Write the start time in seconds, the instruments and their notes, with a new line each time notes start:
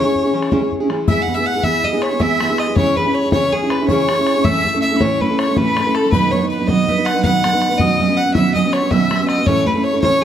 Already playing: mandolin C#5, fiddle C#5, tin whistle C#6
0.05 steel-string acoustic guitar C#4 E4 G#4
0.16 bodhran
0.24 steel-string acoustic guitar C#4 E4 G#4
0.33 steel-string acoustic guitar E3 C#4 E4 G#4
0.42 bodhran
0.51 steel-string acoustic guitar C#3 E3 C#4 E4 G#4, bodhran
0.61 steel-string acoustic guitar C#4 E4 G#4
0.72 bodhran
0.80 steel-string acoustic guitar C#4 E4 G#4
0.89 steel-string acoustic guitar E3 C#4 E4 G#4, bodhran
1.08 steel-string acoustic guitar E3 B3 E4 G#4, mandolin E5, fiddle E5, tin whistle E6, bodhran
1.22 fiddle F#5
1.27 steel-string acoustic guitar E3 B3 E4 G#4, bodhran
1.34 steel-string acoustic guitar E4 G#4, mandolin E5, fiddle E5, tin whistle E6
1.39 steel-string acoustic guitar B3
1.46 fiddle F#5, mandolin F#5, tin whistle F#6
1.55 steel-string acoustic guitar B3 E4 G#4
1.64 steel-string acoustic guitar E3 B3 E4 G#4, fiddle E5, mandolin E5, tin whistle E6, bodhran
1.83 steel-string acoustic guitar E3 B3 E4 G#4, mandolin D#5, fiddle D#5, tin whistle D#6, bodhran
1.93 steel-string acoustic guitar B3 E4 G#4
2.01 mandolin C#5, fiddle C#5, tin whistle C#6, bodhran
2.11 steel-string acoustic guitar B3 E4 G#4
2.20 steel-string acoustic guitar E3 B3 E4 G#4, mandolin E5, fiddle E5, tin whistle E6, bodhran
2.40 steel-string acoustic guitar E3 B3 E4 G#4, tin whistle E6, bodhran
2.49 steel-string acoustic guitar B3 E4 G#4
2.58 mandolin D#5, fiddle D#5, tin whistle D#6, bodhran
2.67 steel-string acoustic guitar B3 E4 G#4
2.76 steel-string acoustic guitar C#3 E3 C#4 E4 G#4, mandolin C#5, fiddle C#5, tin whistle C#6, bodhran
2.96 steel-string acoustic guitar E3 C#4 E4 G#4, fiddle B4, mandolin B4, tin whistle B5, bodhran
3.05 steel-string acoustic guitar C#4 E4 G#4
3.14 fiddle C#5, mandolin C#5
3.23 steel-string acoustic guitar C#4 E4 G#4
3.32 steel-string acoustic guitar C#3 E3 C#4 E4 G#4, fiddle C#5, mandolin C#5, tin whistle C#6, bodhran
3.52 steel-string acoustic guitar E3 C#4 E4 G#4, mandolin G#4, fiddle G#4, tin whistle G#5, bodhran
3.62 steel-string acoustic guitar C#4 E4 G#4
3.70 mandolin B4, fiddle B4, tin whistle B5, bodhran
3.80 steel-string acoustic guitar C#4 E4 G#4
3.88 steel-string acoustic guitar C#3 E3 C#4 E4 G#4, fiddle C#5, mandolin C#5, tin whistle C#6, bodhran
4.09 steel-string acoustic guitar E3 C#4 G#4, bodhran
4.17 steel-string acoustic guitar C#4 E4 G#4
4.27 bodhran
4.36 steel-string acoustic guitar C#4 E4 G#4
4.45 steel-string acoustic guitar A2 E3 A3 C#4 E4 A4, fiddle E5, mandolin E5, tin whistle E6, bodhran
4.64 steel-string acoustic guitar A3 C#4 E4 A4, bodhran
4.74 steel-string acoustic guitar A3 C#4 E4 A4
4.82 fiddle E5, mandolin E5, tin whistle E6
4.92 steel-string acoustic guitar A3 C#4 E4 A4
4.97 steel-string acoustic guitar A2, tin whistle B5
5.01 steel-string acoustic guitar E3 A3 C#4 E4 A4, mandolin C#5, fiddle C#5, tin whistle C#6, bodhran
5.21 steel-string acoustic guitar A3 C#4 E4 A4, fiddle B4, tin whistle B5, bodhran
5.30 steel-string acoustic guitar A3 C#4 E4 A4
5.39 fiddle C#5, mandolin C#5, tin whistle C#6, bodhran
5.48 steel-string acoustic guitar A3 C#4 E4 A4
5.57 steel-string acoustic guitar A2 E3 A3 C#4 E4 A4, mandolin B4, fiddle B4, tin whistle B5, bodhran
5.76 steel-string acoustic guitar A3 C#4 E4 A4, bodhran
5.86 steel-string acoustic guitar A3 C#4 E4 A4
5.94 fiddle A4, mandolin A4, bodhran
6.04 steel-string acoustic guitar A3 C#4 E4 A4
6.11 steel-string acoustic guitar B2 D#3 F#3 B3 D#4 B4, fiddle B4, mandolin B4, tin whistle B5, bodhran
6.31 steel-string acoustic guitar F#3 B3 D#4 B4, fiddle C#5, mandolin C#5, tin whistle C#6, bodhran
6.41 steel-string acoustic guitar F#3 B3 D#4 B4
6.49 fiddle B4, mandolin B4, tin whistle B5
6.59 steel-string acoustic guitar F#3 B3 D#4 B4
6.67 steel-string acoustic guitar B2 D#3 F#3 B3 D#4 B4, fiddle D#5, mandolin D#5, tin whistle D#6, bodhran
6.87 steel-string acoustic guitar F#3 B3 D#4 B4, mandolin E5, bodhran
6.97 steel-string acoustic guitar F#3 B3 D#4 B4
7.05 fiddle F#5, mandolin F#5, tin whistle F#6, bodhran
7.14 steel-string acoustic guitar F#3 B3 D#4 B4
7.22 steel-string acoustic guitar B2 D#3 F#3 B3 D#4 B4, fiddle F#5, mandolin F#5, tin whistle F#6, bodhran
7.44 steel-string acoustic guitar F#3 B3 D#4 B4, bodhran
7.53 steel-string acoustic guitar F#3 B3 D#4 B4
7.62 bodhran
7.70 steel-string acoustic guitar F#3 B3 D#4 B4
7.78 steel-string acoustic guitar B2 D#3 F#3 B3 C#4 F#4, fiddle D#5, mandolin D#5, tin whistle D#6, bodhran
8.00 steel-string acoustic guitar F#3 B3 C#4 F#4, mandolin E5, bodhran
8.08 steel-string acoustic guitar F#3 B3 C#4 F#4
8.17 fiddle F#5, mandolin F#5, tin whistle F#6
8.26 steel-string acoustic guitar F#3 B3 C#4 F#4
8.34 steel-string acoustic guitar B2 D#3 F#3 B3 C#4 F#4, fiddle E5, mandolin E5, tin whistle E6, bodhran
8.54 steel-string acoustic guitar F#3 B3 C#4 F#4, fiddle D#5, mandolin D#5, tin whistle D#6, bodhran
8.64 steel-string acoustic guitar F#3 B3 C#4 F#4
8.73 fiddle C#5, mandolin C#5, tin whistle C#6, bodhran
8.82 steel-string acoustic guitar F#3 B3 C#4 F#4
8.91 steel-string acoustic guitar B2 D#3 F#3 B3 C#4 F#4, fiddle E5, mandolin E5, tin whistle E6, bodhran
9.11 steel-string acoustic guitar F#3 B3 C#4 F#4, bodhran
9.21 steel-string acoustic guitar F#3 B3 C#4 F#4
9.28 fiddle D#5, mandolin D#5, bodhran
9.38 steel-string acoustic guitar F#3 B3 C#4 F#4
9.46 steel-string acoustic guitar A2 E3 A3 C#4 E4 A4, fiddle C#5, mandolin C#5, tin whistle C#6, bodhran
9.66 steel-string acoustic guitar A3 C#4 E4 A4, fiddle B4, mandolin B4, tin whistle B5, bodhran
9.75 steel-string acoustic guitar A3 C#4 E4 A4
9.84 fiddle C#5, mandolin C#5, tin whistle C#6
9.93 steel-string acoustic guitar A3 C#4 E4 A4
10.02 steel-string acoustic guitar A2 E3 A3 C#4 E4 A4, fiddle C#5, mandolin C#5, tin whistle C#6, bodhran